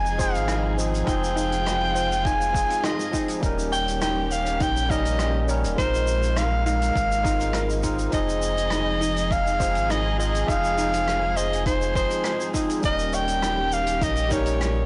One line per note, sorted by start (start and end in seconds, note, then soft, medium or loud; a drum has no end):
0.00 0.36 F1 loud
0.00 0.14 F3 medium
0.00 3.39 F3 medium
0.00 0.15 G#3 medium
0.00 0.16 C4 medium
0.00 0.16 D#4 medium
0.00 1.03 D#4 medium
0.00 0.17 G#4 loud
0.00 3.39 G#4 medium
0.00 0.16 G#5 loud
0.06 shaker soft
0.17 0.74 F3 medium
0.17 0.74 G#3 medium
0.17 0.75 C4 medium
0.17 0.75 D#4 medium
0.17 0.75 G#4 loud
0.17 0.46 C5 medium
0.17 0.75 F5 medium
0.17 kick loud
0.17 shaker loud
0.35 1.03 G#1 loud
0.35 closed hi-hat medium
0.35 shaker soft
0.48 0.75 D#4 medium
0.48 cross-stick loud
0.48 closed hi-hat medium
0.48 shaker medium
0.77 1.03 F3 medium
0.77 1.04 G#3 medium
0.77 1.04 C4 medium
0.77 1.05 D#4 medium
0.77 1.05 G#4 medium
0.77 shaker medium
0.95 closed hi-hat medium
0.95 shaker medium
1.05 2.65 F1 loud
1.05 2.50 F3 loud
1.05 2.51 G#3 medium
1.05 2.51 C4 medium
1.05 1.35 D#4 medium
1.05 3.40 F4 medium
1.05 2.28 G5 loud
1.05 kick loud
1.05 closed hi-hat medium
1.05 shaker medium
1.09 2.52 D#4 medium
1.09 2.53 G#4 loud
1.24 shaker medium
1.36 1.63 D#4 loud
1.36 shaker medium
1.52 closed hi-hat medium
1.52 shaker soft
1.66 cross-stick loud
1.66 closed hi-hat medium
1.66 shaker medium
1.95 2.22 C5 medium
1.95 shaker medium
2.12 closed hi-hat medium
2.12 shaker soft
2.25 2.52 D#4 medium
2.25 2.87 G#5 loud
2.25 kick loud
2.25 closed hi-hat medium
2.25 shaker medium
2.41 shaker soft
2.53 3.09 F3 medium
2.53 3.10 G#3 medium
2.53 3.10 C4 medium
2.53 3.11 D#4 medium
2.53 3.11 G#4 medium
2.53 kick loud
2.53 shaker medium
2.70 closed hi-hat medium
2.70 shaker medium
2.84 3.12 D#4 medium
2.84 3.29 D#5 medium
2.84 cross-stick loud
2.84 closed hi-hat medium
2.84 shaker medium
3.00 shaker medium
3.12 3.39 F3 medium
3.12 3.39 G#3 medium
3.12 3.39 C4 medium
3.12 3.40 D#4 loud
3.12 3.40 D#4 medium
3.12 3.40 G#4 medium
3.12 kick medium
3.12 shaker medium
3.28 closed hi-hat medium
3.28 shaker medium
3.40 4.62 D#1 loud
3.40 5.76 D#3 medium
3.40 4.85 G3 loud
3.40 4.86 A#3 medium
3.40 4.87 C#4 medium
3.40 5.76 C#4 medium
3.40 5.76 G4 medium
3.40 kick loud
3.40 closed hi-hat medium
3.40 shaker medium
3.44 4.87 D#4 medium
3.44 4.88 A#4 loud
3.59 shaker medium
3.72 3.99 C#5 medium
3.72 4.00 G5 loud
3.72 shaker medium
3.88 closed hi-hat medium
3.88 shaker medium
4.01 4.28 D#4 medium
4.01 4.33 G5 loud
4.01 cross-stick loud
4.01 closed hi-hat medium
4.01 shaker medium
4.32 4.64 F5 loud
4.32 shaker medium
4.46 closed hi-hat medium
4.46 shaker soft
4.60 5.66 A#1 medium
4.60 4.88 D#4 medium
4.60 4.92 G5 loud
4.60 kick loud
4.60 closed hi-hat medium
4.60 shaker medium
4.77 shaker soft
4.89 5.45 G3 medium
4.89 5.45 A#3 medium
4.89 5.45 C#4 medium
4.89 5.17 D#4 loud
4.89 5.46 D#4 medium
4.89 5.46 A#4 loud
4.89 5.49 D#5 medium
4.89 kick loud
4.89 shaker medium
5.05 closed hi-hat medium
5.05 shaker soft
5.19 cross-stick medium
5.19 closed hi-hat medium
5.19 shaker medium
5.48 5.74 G3 medium
5.48 5.74 A#3 medium
5.48 5.75 C#4 medium
5.48 5.75 D#4 medium
5.48 5.76 A#4 medium
5.48 5.75 C#5 medium
5.48 shaker loud
5.64 5.75 D#1 medium
5.64 closed hi-hat medium
5.64 shaker medium
5.76 6.91 A#1 loud
5.76 7.21 G#3 loud
5.76 8.11 G#3 medium
5.76 8.11 A#3 medium
5.76 7.21 C4 medium
5.76 6.05 D#4 medium
5.76 12.80 D#4 medium
5.76 7.22 D#4 medium
5.76 6.39 C5 loud
5.76 kick loud
5.76 closed hi-hat medium
5.76 shaker medium
5.80 7.23 F4 medium
5.80 7.24 A#4 loud
5.95 shaker medium
6.07 shaker medium
6.23 closed hi-hat medium
6.23 shaker soft
6.37 6.65 D#4 medium
6.37 6.65 F5 loud
6.37 cross-stick loud
6.37 closed hi-hat medium
6.37 shaker medium
6.66 6.93 D#4 loud
6.66 7.80 F5 loud
6.66 shaker medium
6.82 closed hi-hat medium
6.82 shaker medium
6.96 7.24 G#1 medium
6.96 kick loud
6.96 closed hi-hat medium
6.96 shaker medium
7.12 shaker soft
7.23 8.08 G#1 medium
7.23 7.80 G#3 medium
7.23 7.80 C4 medium
7.23 7.53 D#4 loud
7.23 7.80 D#4 medium
7.23 7.81 F4 medium
7.23 7.81 A#4 medium
7.23 kick loud
7.23 shaker medium
7.40 closed hi-hat medium
7.40 shaker soft
7.53 7.71 A#4 medium
7.53 cross-stick medium
7.53 closed hi-hat medium
7.53 shaker medium
7.70 shaker medium
7.82 8.09 G#3 medium
7.82 8.10 C4 medium
7.82 8.00 D#4 medium
7.82 8.10 D#4 medium
7.82 8.10 F4 medium
7.82 8.11 A#4 medium
7.82 kick medium
7.82 shaker medium
7.99 closed hi-hat medium
7.99 shaker medium
8.10 9.77 F1 loud
8.10 9.56 F3 medium
8.10 12.80 F3 medium
8.10 9.56 G#3 medium
8.10 9.57 C4 medium
8.10 8.40 D#4 medium
8.10 12.79 G#4 medium
8.10 9.33 D#5 loud
8.10 kick loud
8.10 closed hi-hat medium
8.10 shaker medium
8.15 9.58 D#4 medium
8.15 9.58 G#4 loud
8.29 shaker medium
8.43 shaker medium
8.58 closed hi-hat medium
8.58 shaker soft
8.70 9.00 D#4 medium
8.70 cross-stick loud
8.70 closed hi-hat medium
8.70 shaker medium
9.01 9.28 D#4 loud
9.01 shaker loud
9.16 closed hi-hat medium
9.16 shaker medium
9.31 9.92 F5 loud
9.31 kick loud
9.31 closed hi-hat medium
9.31 shaker medium
9.47 shaker soft
9.59 10.15 F3 medium
9.59 10.16 G#3 medium
9.59 10.16 C4 medium
9.59 10.16 D#4 medium
9.59 10.17 G#4 loud
9.59 9.87 C5 medium
9.59 kick loud
9.59 shaker loud
9.75 10.44 G#1 loud
9.75 closed hi-hat medium
9.75 shaker soft
9.90 10.16 D#4 medium
9.90 10.19 D#5 loud
9.90 cross-stick loud
9.90 closed hi-hat medium
9.90 shaker medium
10.18 10.45 F3 medium
10.18 10.45 G#3 medium
10.18 10.45 C4 medium
10.18 10.46 D#4 medium
10.18 10.46 G#4 medium
10.18 10.50 D#5 loud
10.18 shaker medium
10.35 closed hi-hat medium
10.35 shaker medium
10.46 12.06 F1 loud
10.46 11.91 F3 loud
10.46 11.92 G#3 medium
10.46 11.92 C4 medium
10.46 10.76 D#4 medium
10.46 11.38 F5 loud
10.46 kick loud
10.46 closed hi-hat medium
10.46 shaker medium
10.51 11.93 D#4 medium
10.51 11.94 G#4 loud
10.65 shaker medium
10.78 11.05 D#4 loud
10.78 shaker medium
10.94 closed hi-hat medium
10.94 shaker soft
11.07 cross-stick medium
11.07 closed hi-hat medium
11.07 shaker medium
11.36 11.63 C5 medium
11.36 11.66 D#5 loud
11.36 shaker medium
11.53 closed hi-hat medium
11.53 shaker soft
11.66 11.93 D#4 medium
11.66 11.94 C5 loud
11.66 kick loud
11.66 closed hi-hat medium
11.66 shaker medium
11.82 shaker soft
11.95 12.51 F3 medium
11.95 12.51 G#3 medium
11.95 12.51 C4 medium
11.95 12.52 D#4 medium
11.95 12.52 G#4 loud
11.95 12.51 C5 medium
11.95 kick loud
11.95 shaker medium
12.11 closed hi-hat medium
12.11 shaker soft
12.23 12.53 D#4 medium
12.23 cross-stick medium
12.23 closed hi-hat medium
12.23 shaker medium
12.41 shaker medium
12.53 12.80 F3 medium
12.53 12.80 G#3 medium
12.53 12.81 C4 medium
12.53 12.81 D#4 loud
12.53 12.81 D#4 medium
12.53 12.81 G#4 medium
12.53 kick medium
12.53 shaker medium
12.70 closed hi-hat medium
12.70 shaker medium
12.81 14.03 D#1 loud
12.81 14.86 D#3 medium
12.81 14.26 G3 loud
12.81 14.27 A#3 medium
12.81 14.86 C#4 medium
12.81 14.28 C#4 medium
12.81 14.86 G4 medium
12.81 kick loud
12.81 closed hi-hat medium
12.81 shaker medium
12.85 14.29 D#4 medium
12.85 14.29 A#4 loud
12.85 13.16 D#5 loud
12.99 shaker soft
13.13 13.40 C#5 medium
13.13 13.75 G5 loud
13.13 shaker medium
13.28 closed hi-hat medium
13.28 shaker medium
13.42 13.69 D#4 medium
13.42 cross-stick medium
13.42 closed hi-hat medium
13.42 shaker medium
13.72 14.05 F5 loud
13.72 shaker medium
13.87 closed hi-hat medium
13.87 shaker soft
14.01 14.86 A#1 medium
14.01 14.29 D#4 medium
14.01 14.34 D#5 loud
14.01 kick loud
14.01 closed hi-hat medium
14.01 shaker medium
14.16 shaker soft
14.29 14.85 G3 medium
14.29 14.86 A#3 medium
14.29 14.86 C#4 medium
14.29 14.58 D#4 loud
14.29 14.86 D#4 medium
14.29 14.86 A#4 loud
14.29 14.86 C#5 medium
14.29 kick loud
14.29 shaker medium
14.45 closed hi-hat medium
14.45 shaker soft
14.60 cross-stick medium
14.60 closed hi-hat medium
14.60 shaker medium